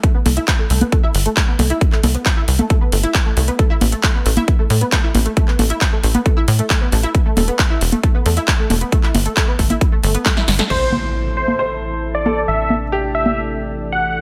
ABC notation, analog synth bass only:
X:1
M:4/4
L:1/8
Q:1/4=135
K:Am
V:1 name="Analog synth bass" clef=bass
z C,, z C,, z G,,, z C,, | z C,, z C,, z G,,, z C,, | z A,,, z A,,, z A,, z A,,, | z A,,, z A,,, z A,, z A,,, |
z E,,, z E,,, z E,, z E,,, | z G,,, z G,,, z G,,, z G,,, | A,,,8 | A,,,8 |]